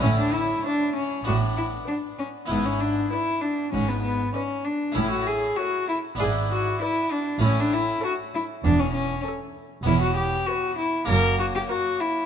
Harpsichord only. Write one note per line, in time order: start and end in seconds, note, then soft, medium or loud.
0.00 0.52 A2 soft
0.00 1.21 A3 soft
0.00 1.22 C#4 soft
0.00 1.23 E4 soft
1.24 1.76 A2 soft
1.24 2.44 B3 soft
1.24 2.46 D4 soft
2.46 4.90 B3 soft
2.46 4.91 E4 soft
2.50 2.99 G#2 soft
3.74 4.22 G#2 soft
4.92 6.13 A3 soft
4.92 6.14 C#4 soft
4.92 6.15 E4 soft
4.96 5.45 A2 soft
6.15 7.36 B3 soft
6.15 7.37 D4 soft
6.15 7.38 E4 soft
6.20 6.68 G#2 soft
7.38 7.90 A2 soft
7.38 9.81 A3 soft
7.38 9.82 C#4 soft
7.38 9.82 E4 soft
8.65 9.12 E2 soft
9.83 10.35 E2 soft
9.83 11.03 B3 soft
9.83 11.04 C#4 soft
11.05 12.25 A#3 soft
11.05 12.26 C#4 soft
11.09 11.57 F#2 soft